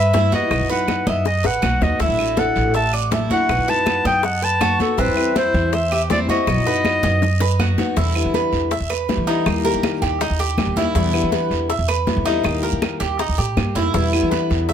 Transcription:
Already playing: G2 B4 E5
0.14 E3 G3 B3 E4, high bongo, low bongo, high conga, short guiro
0.32 E3 G3 B3 E4 F#4 D#5, high bongo, high conga, short guiro
0.51 B1 B2 F#3 B3 D#4 F#4, high bongo, high conga, long guiro, claves
0.60 F#2
0.69 F#3 B3 D#4 F#4 B4 F#5, high bongo, high conga
0.88 high bongo, high conga, short guiro, claves
1.07 F#2 D#5 E5, high bongo, high conga, short guiro
1.25 D#5, muted steel-string acoustic guitar stroke, high bongo, high conga, long guiro
1.44 A1 B4 F#5, high bongo, high conga
1.62 B1 F#3 B3 D#4 F#4, low bongo, high conga, short guiro, claves
1.81 D#2 F#3 B3 D#4 F#4 D#5, low bongo, high conga, short guiro
2.00 D2 D3 F#3 A3 D4 E4 E5, high bongo, high conga, long guiro
2.09 A1
2.19 F#3 A3 D4 E4, high bongo, high conga, claves
2.37 A4 F#5, high bongo, high conga, short guiro
2.56 A1, high bongo, high conga, short guiro
2.74 E5 A5, muted steel-string acoustic guitar stroke, high bongo, high conga, long guiro
2.93 D5, high conga, claves
3.11 F#3 A3 D4 E4, high bongo, low bongo, high conga, short guiro
3.30 F#3 A3 D4 E4 F#4 F#5, high bongo, high conga, short guiro
3.49 B1 B2 F#3 B3 D#4 F#4, high bongo, high conga, long guiro, claves
3.58 F#2
3.68 F#3 B3 D#4 F#4 B4 A5, high bongo, high conga
3.86 high bongo, high conga, short guiro, claves
4.05 F#2 D#5 G5, high bongo, high conga, short guiro
4.23 F#5, muted steel-string acoustic guitar stroke, high bongo, high conga, long guiro
4.42 B4 A5, high conga
4.61 F#3 B3 D#4 F#4, high bongo, low bongo, high conga, short guiro, claves
4.79 F#3 B3 D#4 F#4 A4, high bongo, high conga, short guiro
4.97 A1 E3 G3 C4 E4 B4, high bongo, long guiro
5.07 E2
5.15 G3 C4 E4, high bongo, high conga, claves
5.36 E4 C5, high bongo, high conga, short guiro
5.54 E2, high bongo, high conga, short guiro
5.72 C5 E5, muted steel-string acoustic guitar stroke, high bongo, high conga, long guiro
5.92 G4 E5, high conga, claves
6.10 E3 G3 C4 E4 D5, high bongo, low bongo, high conga, short guiro
6.29 G3 C4 E4 F#4 D#5, high bongo, high conga, short guiro
6.47 B1 B2 F#3 B3 D#4 F#4, high bongo, high conga, long guiro, claves
6.57 F#2
6.66 F#3 B3 D#4 F#4 B4, high bongo, high conga
6.85 high bongo, high conga, short guiro, claves
7.03 F#2 D#5, high bongo, high conga, short guiro
7.22 muted steel-string acoustic guitar stroke, low bongo, high conga, long guiro
7.40 B4, low bongo, high conga
7.60 F#3 B3 D#4 F#4, low bongo, high conga, short guiro, claves
7.78 F#3 B3 D#4 F#4, low bongo, high conga, short guiro
7.96 E2 B2 D3 G3 B3 E4, high bongo, high conga, long guiro
8.15 D3 G3 B3 E4, high bongo, high conga, claves
8.25 E3
8.34 B4, high bongo, high conga, short guiro
8.52 E2, high bongo, high conga, short guiro
8.71 E5, muted steel-string acoustic guitar stroke, high bongo, high conga, long guiro
8.80 E2
8.90 B4, high bongo, high conga, claves
9.09 D3 G3 B3 E4, high bongo, low bongo, high conga, short guiro
9.18 E3
9.27 D3 G3 B3 D#4 E4, short guiro
9.46 D#2 D#3 G3 A#3 D#4 G4, high bongo, high conga, long guiro, claves
9.64 G3 A#3 D#4 G4 A#4, high bongo, high conga
9.74 D#3
9.83 high bongo, high conga, short guiro, claves
10.02 D#2 G4, high bongo, high conga, short guiro
10.21 D#4, muted steel-string acoustic guitar stroke, high bongo, high conga, long guiro
10.30 D#2
10.39 G4, high bongo, high conga
10.57 G3 A#3 D#4 G4, high bongo, low bongo, high conga, short guiro, claves
10.67 D#2
10.76 G3 A#3 D#4 E4 G4, high conga, short guiro
10.95 E2 B2 D3 G3 B3 E4, high bongo, high conga, long guiro
11.13 D3 G3 B3 E4, high bongo, high conga, claves
11.23 E3
11.32 B4, high bongo, high conga, short guiro
11.51 E2, high bongo, high conga, short guiro
11.70 E5, muted steel-string acoustic guitar stroke, high bongo, high conga, long guiro
11.79 E2
11.88 B4, high bongo, high conga, claves
12.07 D3 G3 B3 E4, high bongo, low bongo, high conga, short guiro
12.17 E2
12.26 D3 G3 B3 D#4 E4, short guiro
12.44 D#2 D#3 G3 A#3 D#4 G4, high bongo, high conga, long guiro, claves
12.63 G3 A#3 D#4 G4 A#4, high bongo, high conga
12.72 D#3
12.82 high bongo, high conga, short guiro, claves
13.00 D#2 G4, high bongo, high conga, short guiro
13.19 D#4, muted steel-string acoustic guitar stroke, high bongo, high conga, long guiro
13.29 D#2
13.38 A2 G4, high bongo, high conga
13.57 G2 G3 A#3 D#4 G4, high bongo, low bongo, high conga, short guiro, claves
13.75 F2 G3 A#3 D#4 E4 G4, high conga, short guiro
13.94 E2 B2 D3 G3 B3 E4, high bongo, high conga, long guiro
14.13 D3 G3 B3 E4, high bongo, high conga, claves
14.22 E3
14.31 B4, high bongo, high conga, short guiro
14.50 E2, high bongo, high conga, short guiro
14.69 E5, muted steel-string acoustic guitar stroke, high bongo, high conga, long guiro

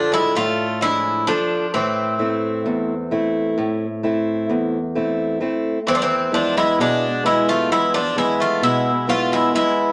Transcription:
Already playing: D3 F3 D4 F4 A4
0.12 G#3 E4
0.35 A2 A3 F4
0.81 F3 G#3 D4 E4
1.27 F3 D4 F4 A4
1.74 A2 E3 C4
2.19 A3 C4 E4
2.66 E2
3.11 A3 C4 E4
3.58 A2
4.03 A3 C4 E4
4.49 E2
4.95 A3 C4 E4
5.40 A3 C4 E4
5.87 E2 E3 C4
5.94 F3 D4
6.02 E3 C4
6.32 F3 G#3 B3 D4 E4
6.57 G#3 E4
6.78 B2 G#3 D4
7.24 G#3 B3 E4
7.49 A3 F4
7.70 E2 G#3 E4
7.94 F3 D4
8.16 G#3 B3 E4
8.40 A3 F4
8.62 B2 G#3 E4
9.07 G#3 A3 B3 E4 F4
9.32 G#3 E4
9.54 G#3 B3 E4

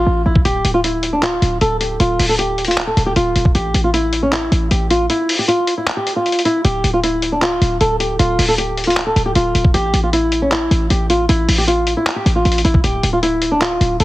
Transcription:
Already playing: F4
0.06 A1
0.26 A1 E4
0.35 kick
0.45 D1 G4, closed hi-hat
0.64 D1, closed hi-hat
0.74 F4
0.84 E4, closed hi-hat
1.03 closed hi-hat
1.13 D4
1.22 F4, clap, closed hi-hat
1.42 D1, closed hi-hat
1.61 D1 A4, closed hi-hat
1.80 G4, closed hi-hat
2.00 D1 F4, closed hi-hat
2.19 D1, open hi-hat
2.29 A4
2.39 G4, closed hi-hat
2.58 closed hi-hat
2.65 F4, closed hi-hat
2.71 closed hi-hat
2.77 clap
2.87 A4
2.97 D1, closed hi-hat
3.06 G4
3.16 D1 F4, closed hi-hat
3.36 D1, closed hi-hat
3.45 kick
3.55 A1 G4, closed hi-hat
3.74 A1, closed hi-hat
3.84 F4
3.94 E4, closed hi-hat
4.13 closed hi-hat
4.23 C#4
4.32 E4, clap, closed hi-hat
4.52 A1, closed hi-hat
4.71 A1 G4, closed hi-hat
4.90 F4, closed hi-hat
5.10 E4, closed hi-hat
5.29 open hi-hat
5.39 G4
5.48 F4, closed hi-hat
5.67 closed hi-hat
5.78 E4
5.87 clap, closed hi-hat
5.97 G4
6.07 closed hi-hat
6.16 F4
6.26 closed hi-hat
6.32 closed hi-hat
6.39 closed hi-hat
6.45 E4, closed hi-hat
6.65 D1 G4, closed hi-hat
6.84 D1, closed hi-hat
6.94 F4
7.03 E4, closed hi-hat
7.22 closed hi-hat
7.32 D4
7.42 F4, clap, closed hi-hat
7.61 D1, closed hi-hat
7.81 D1 A4, closed hi-hat
8.00 G4, closed hi-hat
8.19 D1 F4, closed hi-hat
8.39 D1, open hi-hat
8.48 A4
8.58 G4, closed hi-hat
8.77 closed hi-hat
8.84 F4, closed hi-hat
8.90 closed hi-hat
8.97 clap, closed hi-hat
9.06 A4
9.16 D1, closed hi-hat
9.26 G4
9.35 D1 F4, closed hi-hat
9.55 D1, closed hi-hat
9.65 kick
9.74 A1 G4, closed hi-hat
9.94 A1, closed hi-hat
10.03 F4
10.13 E4, closed hi-hat
10.32 closed hi-hat
10.42 C#4
10.52 E4, clap, closed hi-hat
10.71 A1, closed hi-hat
10.90 A1 G4, closed hi-hat
11.10 F4, closed hi-hat
11.29 A1 E4, closed hi-hat
11.48 A1, open hi-hat
11.58 G4
11.67 F4, closed hi-hat
11.87 closed hi-hat
11.97 E4
12.06 clap, closed hi-hat
12.16 G4
12.26 A1, closed hi-hat
12.36 F4
12.45 A1, closed hi-hat
12.52 closed hi-hat
12.58 closed hi-hat
12.64 A1 E4, closed hi-hat
12.74 kick
12.84 D1 G4, closed hi-hat
13.03 D1, closed hi-hat
13.13 F4
13.23 E4, closed hi-hat
13.42 closed hi-hat
13.52 D4
13.61 F4, clap, closed hi-hat
13.81 D1, closed hi-hat
14.00 D1 A4, closed hi-hat

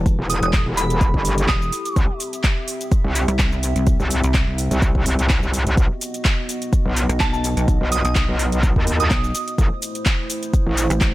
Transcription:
Already playing: E1 E4 G4
0.06 A4, kick, closed hi-hat, shaker
0.19 E1
0.30 D#6, open hi-hat, shaker
0.42 E1 D#6, closed hi-hat, shaker
0.53 kick, clap, closed hi-hat, shaker
0.66 E1
0.77 B5, open hi-hat, shaker
0.90 closed hi-hat, shaker
1.01 kick, closed hi-hat, shaker
1.14 G1, kick
1.25 open hi-hat, shaker
1.38 closed hi-hat, shaker
1.48 E1 D#6, kick, clap, closed hi-hat, shaker
1.62 shaker
1.72 open hi-hat, shaker
1.85 closed hi-hat, shaker
1.96 C2 C4 E5, kick, closed hi-hat, shaker
2.20 open hi-hat, shaker
2.33 closed hi-hat, shaker
2.44 kick, clap, closed hi-hat, shaker
2.68 open hi-hat, shaker
2.81 closed hi-hat, shaker
2.91 kick, closed hi-hat, shaker
3.04 C2
3.15 open hi-hat, shaker
3.28 C2, closed hi-hat, shaker
3.39 kick, clap, closed hi-hat, shaker
3.52 shaker
3.63 open hi-hat, shaker
3.76 C2, closed hi-hat, shaker
3.87 kick, closed hi-hat, shaker
4.00 C2, shaker
4.10 open hi-hat, shaker
4.23 C2, closed hi-hat, shaker
4.34 kick, clap, closed hi-hat, shaker
4.47 C2
4.58 open hi-hat, shaker
4.71 C2, closed hi-hat, shaker
4.82 kick, closed hi-hat, shaker
4.95 kick
5.06 C2, open hi-hat, shaker
5.19 closed hi-hat, shaker
5.29 kick, clap, closed hi-hat, shaker
5.43 C2, shaker
5.54 open hi-hat, shaker
5.67 C2, closed hi-hat, shaker
5.77 B1 B3 F#4 D#5, kick, closed hi-hat, shaker
6.01 open hi-hat, shaker
6.14 closed hi-hat, shaker
6.25 kick, clap, closed hi-hat, shaker
6.49 open hi-hat, shaker
6.62 closed hi-hat, shaker
6.73 kick, closed hi-hat, shaker
6.86 B1
6.97 open hi-hat, shaker
7.09 B1, closed hi-hat, shaker
7.20 A5, kick, clap, closed hi-hat, shaker
7.33 A5, shaker
7.44 open hi-hat, shaker
7.57 B1, closed hi-hat, shaker
7.68 kick, closed hi-hat, shaker
7.81 B1
7.92 D#6, open hi-hat, shaker
8.05 B1 D#6, closed hi-hat, shaker
8.15 kick, clap, closed hi-hat, shaker
8.28 B1
8.39 open hi-hat, shaker
8.52 closed hi-hat, shaker
8.63 kick, closed hi-hat, shaker
8.76 D#2, kick
8.87 open hi-hat, shaker
9.00 D#6, closed hi-hat, shaker
9.10 B1, kick, clap, closed hi-hat, shaker
9.24 shaker
9.35 open hi-hat, shaker
9.48 closed hi-hat, shaker
9.58 A1 A3 E4 C5, kick, closed hi-hat, shaker
9.82 open hi-hat, shaker
9.95 closed hi-hat, shaker
10.06 kick, clap, closed hi-hat, shaker
10.30 open hi-hat, shaker
10.43 closed hi-hat, shaker
10.53 kick, closed hi-hat, shaker
10.67 A1
10.77 open hi-hat, shaker
10.90 A1, closed hi-hat, shaker
11.01 kick, clap, closed hi-hat, shaker

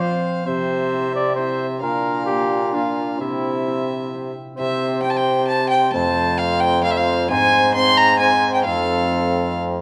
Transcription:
Already playing: F3
0.00 C4 F4 C5 F5
0.46 C3 C4 C5 E5
0.93 C4 E4
1.15 D5
1.36 C4 E4 C5 E5
1.80 A#2 D4 A#4 F5
2.26 A#3 D4 F4 G4
2.73 A#3 D4 F4 F5
3.19 C3 C4 E4 E5
3.67 C4 E4
4.14 C4 E4
4.57 C3 C4 E4 C5 E5
5.02 C4 E4 C5 G5
5.10 A5
5.17 G5
5.48 A5
5.70 G5
5.91 F2 A3 C4 F4 C5 A5
6.38 F5
6.60 G5
6.81 A3 C4 F4 C5 F5
6.85 C4
6.91 E5
6.97 F5
7.27 G#2 C4 D#4
7.31 C5 G#5
7.75 C4 C5 C6
7.97 A#5
8.20 C4 C5 G#5
8.54 G5
8.63 F2 A3 C4 F4 A4 F5
8.67 F2

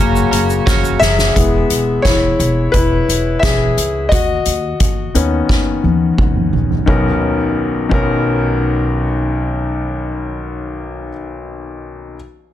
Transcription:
Already playing: F#1 C#3 F#3 C#4 F#4
0.00 A#3 A#4
0.16 shaker
0.31 F#1 C#4 F#4 A#4, closed hi-hat
0.50 shaker
0.66 F#1 F#3 C#4 F#4 A#4, kick, snare, shaker
0.85 shaker
1.00 F#1 F#4 G#4 A#4 E5, snare, shaker
1.04 C#4
1.19 snare, shaker
1.36 E1 E3 G#3 B3, kick, closed hi-hat
1.70 E1, closed hi-hat
2.02 E1 E4 C#5, kick, snare, closed hi-hat
2.39 E1, closed hi-hat
2.72 E1 E4 B4, kick, closed hi-hat
3.08 E1, closed hi-hat
3.39 E1 E5, kick, snare, closed hi-hat
3.44 G#4
3.77 C#2, closed hi-hat
4.09 D#2 F#4 D#5, kick, closed hi-hat
4.45 D#2, closed hi-hat
4.80 D#2, kick, closed hi-hat
5.14 D#2 D#3 B3 C#4, closed hi-hat
5.49 D#2, kick, snare
5.83 D#2, high tom
6.18 D#2, kick, mid tom
6.35 mid tom
6.53 A#1, floor tom
6.70 floor tom
6.86 B1 D#3 B3 C#4 A#4, kick
7.89 B1 D#3 B3 C#4, kick
7.93 A#4

